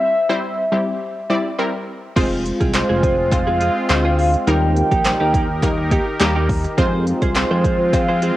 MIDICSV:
0, 0, Header, 1, 8, 480
1, 0, Start_track
1, 0, Key_signature, -4, "minor"
1, 0, Tempo, 576923
1, 1802, Time_signature, 4, 2, 24, 8
1, 6961, End_track
2, 0, Start_track
2, 0, Title_t, "Soft synth lead"
2, 0, Program_c, 0, 80
2, 0, Note_on_c, 0, 76, 116
2, 1289, Note_off_c, 0, 76, 0
2, 2283, Note_on_c, 0, 72, 93
2, 2729, Note_off_c, 0, 72, 0
2, 2762, Note_on_c, 0, 77, 107
2, 3209, Note_off_c, 0, 77, 0
2, 3243, Note_on_c, 0, 77, 111
2, 3723, Note_on_c, 0, 79, 127
2, 3735, Note_off_c, 0, 77, 0
2, 5162, Note_off_c, 0, 79, 0
2, 6122, Note_on_c, 0, 72, 107
2, 6600, Note_on_c, 0, 77, 121
2, 6613, Note_off_c, 0, 72, 0
2, 6961, Note_off_c, 0, 77, 0
2, 6961, End_track
3, 0, Start_track
3, 0, Title_t, "Clean electric guitar"
3, 0, Program_c, 1, 27
3, 1799, Note_on_c, 1, 60, 91
3, 1804, Note_on_c, 1, 65, 95
3, 1809, Note_on_c, 1, 68, 106
3, 2023, Note_off_c, 1, 60, 0
3, 2025, Note_off_c, 1, 65, 0
3, 2027, Note_off_c, 1, 68, 0
3, 2166, Note_on_c, 1, 68, 61
3, 2172, Note_on_c, 1, 65, 58
3, 2176, Note_on_c, 1, 60, 51
3, 2257, Note_off_c, 1, 68, 0
3, 2260, Note_off_c, 1, 65, 0
3, 2262, Note_off_c, 1, 60, 0
3, 2407, Note_on_c, 1, 68, 84
3, 2412, Note_on_c, 1, 65, 73
3, 2416, Note_on_c, 1, 60, 73
3, 2510, Note_off_c, 1, 60, 0
3, 2515, Note_off_c, 1, 65, 0
3, 2519, Note_off_c, 1, 68, 0
3, 2520, Note_on_c, 1, 60, 60
3, 2525, Note_on_c, 1, 65, 74
3, 2529, Note_on_c, 1, 68, 74
3, 2621, Note_off_c, 1, 60, 0
3, 2624, Note_off_c, 1, 65, 0
3, 2626, Note_off_c, 1, 68, 0
3, 2887, Note_on_c, 1, 68, 63
3, 2892, Note_on_c, 1, 65, 61
3, 2897, Note_on_c, 1, 60, 53
3, 2977, Note_off_c, 1, 68, 0
3, 2980, Note_off_c, 1, 65, 0
3, 2982, Note_off_c, 1, 60, 0
3, 2999, Note_on_c, 1, 60, 83
3, 3005, Note_on_c, 1, 65, 93
3, 3009, Note_on_c, 1, 68, 97
3, 3118, Note_off_c, 1, 68, 0
3, 3124, Note_off_c, 1, 65, 0
3, 3129, Note_off_c, 1, 60, 0
3, 3367, Note_on_c, 1, 68, 83
3, 3372, Note_on_c, 1, 65, 78
3, 3376, Note_on_c, 1, 60, 72
3, 3469, Note_off_c, 1, 60, 0
3, 3474, Note_off_c, 1, 65, 0
3, 3479, Note_off_c, 1, 68, 0
3, 3479, Note_on_c, 1, 60, 63
3, 3484, Note_on_c, 1, 65, 67
3, 3488, Note_on_c, 1, 68, 68
3, 3581, Note_off_c, 1, 60, 0
3, 3584, Note_off_c, 1, 65, 0
3, 3586, Note_off_c, 1, 68, 0
3, 3720, Note_on_c, 1, 58, 84
3, 3725, Note_on_c, 1, 63, 88
3, 3729, Note_on_c, 1, 67, 96
3, 3943, Note_off_c, 1, 58, 0
3, 3945, Note_off_c, 1, 63, 0
3, 3947, Note_off_c, 1, 67, 0
3, 4087, Note_on_c, 1, 67, 67
3, 4092, Note_on_c, 1, 63, 57
3, 4097, Note_on_c, 1, 58, 50
3, 4177, Note_off_c, 1, 67, 0
3, 4180, Note_off_c, 1, 63, 0
3, 4182, Note_off_c, 1, 58, 0
3, 4326, Note_on_c, 1, 67, 86
3, 4332, Note_on_c, 1, 63, 79
3, 4336, Note_on_c, 1, 58, 71
3, 4429, Note_off_c, 1, 58, 0
3, 4434, Note_off_c, 1, 63, 0
3, 4439, Note_off_c, 1, 67, 0
3, 4439, Note_on_c, 1, 58, 69
3, 4444, Note_on_c, 1, 63, 71
3, 4449, Note_on_c, 1, 67, 71
3, 4541, Note_off_c, 1, 58, 0
3, 4544, Note_off_c, 1, 63, 0
3, 4546, Note_off_c, 1, 67, 0
3, 4920, Note_on_c, 1, 58, 91
3, 4925, Note_on_c, 1, 63, 100
3, 4929, Note_on_c, 1, 67, 114
3, 5038, Note_off_c, 1, 67, 0
3, 5044, Note_off_c, 1, 63, 0
3, 5049, Note_off_c, 1, 58, 0
3, 5287, Note_on_c, 1, 67, 96
3, 5292, Note_on_c, 1, 63, 85
3, 5296, Note_on_c, 1, 58, 75
3, 5390, Note_off_c, 1, 58, 0
3, 5394, Note_off_c, 1, 63, 0
3, 5397, Note_off_c, 1, 67, 0
3, 5639, Note_on_c, 1, 65, 95
3, 5644, Note_on_c, 1, 68, 98
3, 5649, Note_on_c, 1, 72, 105
3, 5863, Note_off_c, 1, 65, 0
3, 5865, Note_off_c, 1, 68, 0
3, 5867, Note_off_c, 1, 72, 0
3, 6007, Note_on_c, 1, 72, 65
3, 6012, Note_on_c, 1, 68, 60
3, 6016, Note_on_c, 1, 65, 57
3, 6097, Note_off_c, 1, 72, 0
3, 6100, Note_off_c, 1, 68, 0
3, 6102, Note_off_c, 1, 65, 0
3, 6247, Note_on_c, 1, 72, 87
3, 6252, Note_on_c, 1, 68, 75
3, 6256, Note_on_c, 1, 65, 75
3, 6349, Note_off_c, 1, 65, 0
3, 6354, Note_off_c, 1, 68, 0
3, 6359, Note_off_c, 1, 72, 0
3, 6359, Note_on_c, 1, 65, 73
3, 6364, Note_on_c, 1, 68, 72
3, 6369, Note_on_c, 1, 72, 73
3, 6461, Note_off_c, 1, 65, 0
3, 6464, Note_off_c, 1, 68, 0
3, 6466, Note_off_c, 1, 72, 0
3, 6727, Note_on_c, 1, 72, 70
3, 6732, Note_on_c, 1, 68, 57
3, 6736, Note_on_c, 1, 65, 54
3, 6817, Note_off_c, 1, 72, 0
3, 6820, Note_off_c, 1, 68, 0
3, 6822, Note_off_c, 1, 65, 0
3, 6839, Note_on_c, 1, 65, 91
3, 6845, Note_on_c, 1, 68, 91
3, 6849, Note_on_c, 1, 72, 101
3, 6957, Note_off_c, 1, 72, 0
3, 6961, Note_off_c, 1, 65, 0
3, 6961, Note_off_c, 1, 68, 0
3, 6961, End_track
4, 0, Start_track
4, 0, Title_t, "Analog synth pad"
4, 0, Program_c, 2, 89
4, 1802, Note_on_c, 2, 56, 75
4, 1802, Note_on_c, 2, 60, 66
4, 1802, Note_on_c, 2, 65, 88
4, 3703, Note_off_c, 2, 56, 0
4, 3703, Note_off_c, 2, 60, 0
4, 3703, Note_off_c, 2, 65, 0
4, 3723, Note_on_c, 2, 51, 73
4, 3723, Note_on_c, 2, 63, 72
4, 3723, Note_on_c, 2, 67, 71
4, 3723, Note_on_c, 2, 70, 88
4, 5623, Note_off_c, 2, 63, 0
4, 5623, Note_off_c, 2, 67, 0
4, 5623, Note_off_c, 2, 70, 0
4, 5624, Note_off_c, 2, 51, 0
4, 5642, Note_on_c, 2, 56, 76
4, 5642, Note_on_c, 2, 60, 70
4, 5642, Note_on_c, 2, 65, 87
4, 6961, Note_off_c, 2, 56, 0
4, 6961, Note_off_c, 2, 60, 0
4, 6961, Note_off_c, 2, 65, 0
4, 6961, End_track
5, 0, Start_track
5, 0, Title_t, "Synth pluck"
5, 0, Program_c, 3, 84
5, 0, Note_on_c, 3, 55, 78
5, 0, Note_on_c, 3, 60, 68
5, 0, Note_on_c, 3, 64, 71
5, 0, Note_on_c, 3, 72, 83
5, 144, Note_off_c, 3, 55, 0
5, 145, Note_off_c, 3, 60, 0
5, 145, Note_off_c, 3, 64, 0
5, 146, Note_off_c, 3, 72, 0
5, 247, Note_on_c, 3, 55, 97
5, 248, Note_on_c, 3, 60, 87
5, 250, Note_on_c, 3, 64, 89
5, 251, Note_on_c, 3, 72, 102
5, 509, Note_off_c, 3, 55, 0
5, 509, Note_off_c, 3, 60, 0
5, 510, Note_off_c, 3, 64, 0
5, 511, Note_off_c, 3, 72, 0
5, 600, Note_on_c, 3, 55, 93
5, 601, Note_on_c, 3, 60, 85
5, 603, Note_on_c, 3, 64, 81
5, 604, Note_on_c, 3, 67, 101
5, 956, Note_off_c, 3, 55, 0
5, 957, Note_off_c, 3, 60, 0
5, 958, Note_off_c, 3, 64, 0
5, 958, Note_off_c, 3, 67, 0
5, 1080, Note_on_c, 3, 55, 86
5, 1081, Note_on_c, 3, 60, 82
5, 1083, Note_on_c, 3, 64, 80
5, 1084, Note_on_c, 3, 74, 98
5, 1259, Note_off_c, 3, 55, 0
5, 1260, Note_off_c, 3, 60, 0
5, 1261, Note_off_c, 3, 64, 0
5, 1261, Note_off_c, 3, 74, 0
5, 1320, Note_on_c, 3, 55, 86
5, 1321, Note_on_c, 3, 60, 79
5, 1323, Note_on_c, 3, 64, 80
5, 1324, Note_on_c, 3, 70, 96
5, 1676, Note_off_c, 3, 55, 0
5, 1677, Note_off_c, 3, 60, 0
5, 1678, Note_off_c, 3, 64, 0
5, 1678, Note_off_c, 3, 70, 0
5, 1800, Note_on_c, 3, 56, 99
5, 1801, Note_on_c, 3, 60, 90
5, 1803, Note_on_c, 3, 65, 90
5, 1804, Note_on_c, 3, 72, 113
5, 2156, Note_off_c, 3, 56, 0
5, 2157, Note_off_c, 3, 60, 0
5, 2158, Note_off_c, 3, 65, 0
5, 2158, Note_off_c, 3, 72, 0
5, 2280, Note_on_c, 3, 56, 73
5, 2281, Note_on_c, 3, 60, 67
5, 2283, Note_on_c, 3, 65, 67
5, 2284, Note_on_c, 3, 72, 82
5, 2636, Note_off_c, 3, 56, 0
5, 2637, Note_off_c, 3, 60, 0
5, 2638, Note_off_c, 3, 65, 0
5, 2638, Note_off_c, 3, 72, 0
5, 2760, Note_on_c, 3, 56, 74
5, 2762, Note_on_c, 3, 60, 69
5, 2763, Note_on_c, 3, 65, 68
5, 2764, Note_on_c, 3, 72, 82
5, 3116, Note_off_c, 3, 56, 0
5, 3117, Note_off_c, 3, 60, 0
5, 3118, Note_off_c, 3, 65, 0
5, 3119, Note_off_c, 3, 72, 0
5, 3239, Note_on_c, 3, 56, 89
5, 3241, Note_on_c, 3, 60, 82
5, 3242, Note_on_c, 3, 65, 80
5, 3244, Note_on_c, 3, 72, 99
5, 3596, Note_off_c, 3, 56, 0
5, 3597, Note_off_c, 3, 60, 0
5, 3597, Note_off_c, 3, 65, 0
5, 3598, Note_off_c, 3, 72, 0
5, 3720, Note_on_c, 3, 55, 80
5, 3722, Note_on_c, 3, 58, 77
5, 3723, Note_on_c, 3, 63, 79
5, 3724, Note_on_c, 3, 70, 96
5, 4076, Note_off_c, 3, 55, 0
5, 4077, Note_off_c, 3, 58, 0
5, 4078, Note_off_c, 3, 63, 0
5, 4079, Note_off_c, 3, 70, 0
5, 4200, Note_on_c, 3, 55, 77
5, 4201, Note_on_c, 3, 58, 67
5, 4203, Note_on_c, 3, 63, 67
5, 4204, Note_on_c, 3, 72, 82
5, 4556, Note_off_c, 3, 55, 0
5, 4557, Note_off_c, 3, 58, 0
5, 4558, Note_off_c, 3, 63, 0
5, 4558, Note_off_c, 3, 72, 0
5, 4680, Note_on_c, 3, 55, 89
5, 4681, Note_on_c, 3, 58, 81
5, 4682, Note_on_c, 3, 63, 80
5, 4684, Note_on_c, 3, 70, 99
5, 5036, Note_off_c, 3, 55, 0
5, 5037, Note_off_c, 3, 58, 0
5, 5038, Note_off_c, 3, 63, 0
5, 5038, Note_off_c, 3, 70, 0
5, 5160, Note_on_c, 3, 55, 106
5, 5161, Note_on_c, 3, 58, 98
5, 5162, Note_on_c, 3, 63, 95
5, 5164, Note_on_c, 3, 67, 121
5, 5516, Note_off_c, 3, 55, 0
5, 5517, Note_off_c, 3, 58, 0
5, 5518, Note_off_c, 3, 63, 0
5, 5518, Note_off_c, 3, 67, 0
5, 5640, Note_on_c, 3, 56, 103
5, 5641, Note_on_c, 3, 60, 97
5, 5643, Note_on_c, 3, 65, 93
5, 5644, Note_on_c, 3, 72, 115
5, 5996, Note_off_c, 3, 56, 0
5, 5997, Note_off_c, 3, 60, 0
5, 5998, Note_off_c, 3, 65, 0
5, 5998, Note_off_c, 3, 72, 0
5, 6120, Note_on_c, 3, 56, 72
5, 6122, Note_on_c, 3, 60, 67
5, 6123, Note_on_c, 3, 65, 68
5, 6124, Note_on_c, 3, 72, 82
5, 6476, Note_off_c, 3, 56, 0
5, 6477, Note_off_c, 3, 60, 0
5, 6478, Note_off_c, 3, 65, 0
5, 6479, Note_off_c, 3, 72, 0
5, 6600, Note_on_c, 3, 56, 74
5, 6601, Note_on_c, 3, 60, 69
5, 6603, Note_on_c, 3, 65, 67
5, 6604, Note_on_c, 3, 72, 81
5, 6956, Note_off_c, 3, 56, 0
5, 6957, Note_off_c, 3, 60, 0
5, 6958, Note_off_c, 3, 65, 0
5, 6958, Note_off_c, 3, 72, 0
5, 6961, End_track
6, 0, Start_track
6, 0, Title_t, "Analog synth bass"
6, 0, Program_c, 4, 38
6, 1802, Note_on_c, 4, 29, 102
6, 2096, Note_off_c, 4, 29, 0
6, 2169, Note_on_c, 4, 36, 89
6, 2361, Note_off_c, 4, 36, 0
6, 2409, Note_on_c, 4, 29, 86
6, 3075, Note_off_c, 4, 29, 0
6, 3242, Note_on_c, 4, 38, 90
6, 3626, Note_off_c, 4, 38, 0
6, 3722, Note_on_c, 4, 39, 102
6, 4016, Note_off_c, 4, 39, 0
6, 4089, Note_on_c, 4, 34, 94
6, 4281, Note_off_c, 4, 34, 0
6, 4329, Note_on_c, 4, 39, 91
6, 4995, Note_off_c, 4, 39, 0
6, 5162, Note_on_c, 4, 39, 93
6, 5546, Note_off_c, 4, 39, 0
6, 5642, Note_on_c, 4, 41, 102
6, 5936, Note_off_c, 4, 41, 0
6, 6009, Note_on_c, 4, 36, 87
6, 6201, Note_off_c, 4, 36, 0
6, 6249, Note_on_c, 4, 41, 91
6, 6915, Note_off_c, 4, 41, 0
6, 6961, End_track
7, 0, Start_track
7, 0, Title_t, "Muted clean electric guitar strokes"
7, 2040, Note_on_c, 9, 29, 39
7, 2124, Note_off_c, 9, 29, 0
7, 2280, Note_on_c, 9, 29, 44
7, 2364, Note_off_c, 9, 29, 0
7, 2648, Note_on_c, 9, 29, 44
7, 2731, Note_off_c, 9, 29, 0
7, 2760, Note_on_c, 9, 29, 41
7, 2844, Note_off_c, 9, 29, 0
7, 3128, Note_on_c, 9, 29, 46
7, 3211, Note_off_c, 9, 29, 0
7, 3240, Note_on_c, 9, 29, 43
7, 3323, Note_off_c, 9, 29, 0
7, 3961, Note_on_c, 9, 29, 53
7, 4044, Note_off_c, 9, 29, 0
7, 4568, Note_on_c, 9, 29, 58
7, 4651, Note_off_c, 9, 29, 0
7, 4680, Note_on_c, 9, 29, 40
7, 4763, Note_off_c, 9, 29, 0
7, 4807, Note_on_c, 9, 29, 42
7, 4890, Note_off_c, 9, 29, 0
7, 5048, Note_on_c, 9, 29, 41
7, 5131, Note_off_c, 9, 29, 0
7, 5161, Note_on_c, 9, 29, 50
7, 5244, Note_off_c, 9, 29, 0
7, 5400, Note_on_c, 9, 29, 43
7, 5483, Note_off_c, 9, 29, 0
7, 5528, Note_on_c, 9, 29, 49
7, 5611, Note_off_c, 9, 29, 0
7, 6487, Note_on_c, 9, 29, 47
7, 6570, Note_off_c, 9, 29, 0
7, 6600, Note_on_c, 9, 29, 38
7, 6684, Note_off_c, 9, 29, 0
7, 6961, End_track
8, 0, Start_track
8, 0, Title_t, "Drums"
8, 1802, Note_on_c, 9, 36, 126
8, 1802, Note_on_c, 9, 42, 91
8, 1802, Note_on_c, 9, 49, 98
8, 1885, Note_off_c, 9, 36, 0
8, 1885, Note_off_c, 9, 42, 0
8, 1885, Note_off_c, 9, 49, 0
8, 2044, Note_on_c, 9, 42, 74
8, 2127, Note_off_c, 9, 42, 0
8, 2169, Note_on_c, 9, 36, 88
8, 2169, Note_on_c, 9, 42, 51
8, 2252, Note_off_c, 9, 42, 0
8, 2253, Note_off_c, 9, 36, 0
8, 2280, Note_on_c, 9, 42, 99
8, 2282, Note_on_c, 9, 39, 85
8, 2364, Note_off_c, 9, 42, 0
8, 2366, Note_off_c, 9, 39, 0
8, 2522, Note_on_c, 9, 36, 106
8, 2524, Note_on_c, 9, 42, 86
8, 2605, Note_off_c, 9, 36, 0
8, 2608, Note_off_c, 9, 42, 0
8, 2761, Note_on_c, 9, 36, 105
8, 2764, Note_on_c, 9, 39, 61
8, 2764, Note_on_c, 9, 42, 102
8, 2844, Note_off_c, 9, 36, 0
8, 2847, Note_off_c, 9, 39, 0
8, 2847, Note_off_c, 9, 42, 0
8, 3000, Note_on_c, 9, 42, 85
8, 3083, Note_off_c, 9, 42, 0
8, 3241, Note_on_c, 9, 39, 93
8, 3243, Note_off_c, 9, 39, 0
8, 3243, Note_on_c, 9, 39, 115
8, 3243, Note_on_c, 9, 42, 90
8, 3326, Note_off_c, 9, 42, 0
8, 3327, Note_off_c, 9, 39, 0
8, 3482, Note_on_c, 9, 46, 71
8, 3565, Note_off_c, 9, 46, 0
8, 3609, Note_on_c, 9, 42, 57
8, 3692, Note_off_c, 9, 42, 0
8, 3722, Note_on_c, 9, 42, 91
8, 3805, Note_off_c, 9, 42, 0
8, 3964, Note_on_c, 9, 42, 72
8, 4047, Note_off_c, 9, 42, 0
8, 4089, Note_on_c, 9, 36, 90
8, 4089, Note_on_c, 9, 42, 52
8, 4172, Note_off_c, 9, 36, 0
8, 4172, Note_off_c, 9, 42, 0
8, 4200, Note_on_c, 9, 42, 99
8, 4202, Note_on_c, 9, 39, 86
8, 4284, Note_off_c, 9, 42, 0
8, 4285, Note_off_c, 9, 39, 0
8, 4442, Note_on_c, 9, 36, 101
8, 4444, Note_on_c, 9, 42, 82
8, 4525, Note_off_c, 9, 36, 0
8, 4527, Note_off_c, 9, 42, 0
8, 4681, Note_on_c, 9, 36, 103
8, 4683, Note_on_c, 9, 42, 102
8, 4684, Note_on_c, 9, 39, 61
8, 4764, Note_off_c, 9, 36, 0
8, 4766, Note_off_c, 9, 42, 0
8, 4767, Note_off_c, 9, 39, 0
8, 4920, Note_on_c, 9, 42, 86
8, 4922, Note_on_c, 9, 36, 99
8, 5004, Note_off_c, 9, 42, 0
8, 5005, Note_off_c, 9, 36, 0
8, 5161, Note_on_c, 9, 39, 90
8, 5163, Note_off_c, 9, 39, 0
8, 5163, Note_on_c, 9, 39, 114
8, 5163, Note_on_c, 9, 42, 83
8, 5246, Note_off_c, 9, 42, 0
8, 5247, Note_off_c, 9, 39, 0
8, 5403, Note_on_c, 9, 36, 98
8, 5403, Note_on_c, 9, 46, 71
8, 5486, Note_off_c, 9, 36, 0
8, 5486, Note_off_c, 9, 46, 0
8, 5529, Note_on_c, 9, 42, 55
8, 5612, Note_off_c, 9, 42, 0
8, 5641, Note_on_c, 9, 42, 93
8, 5642, Note_on_c, 9, 36, 122
8, 5724, Note_off_c, 9, 42, 0
8, 5725, Note_off_c, 9, 36, 0
8, 5883, Note_on_c, 9, 42, 76
8, 5967, Note_off_c, 9, 42, 0
8, 6007, Note_on_c, 9, 42, 51
8, 6009, Note_on_c, 9, 36, 89
8, 6091, Note_off_c, 9, 42, 0
8, 6092, Note_off_c, 9, 36, 0
8, 6120, Note_on_c, 9, 42, 99
8, 6121, Note_on_c, 9, 39, 104
8, 6122, Note_off_c, 9, 39, 0
8, 6122, Note_on_c, 9, 39, 83
8, 6203, Note_off_c, 9, 42, 0
8, 6205, Note_off_c, 9, 39, 0
8, 6361, Note_on_c, 9, 36, 106
8, 6364, Note_on_c, 9, 42, 89
8, 6445, Note_off_c, 9, 36, 0
8, 6447, Note_off_c, 9, 42, 0
8, 6601, Note_on_c, 9, 36, 102
8, 6603, Note_on_c, 9, 42, 103
8, 6604, Note_on_c, 9, 39, 64
8, 6684, Note_off_c, 9, 36, 0
8, 6687, Note_off_c, 9, 39, 0
8, 6687, Note_off_c, 9, 42, 0
8, 6840, Note_on_c, 9, 42, 91
8, 6923, Note_off_c, 9, 42, 0
8, 6961, End_track
0, 0, End_of_file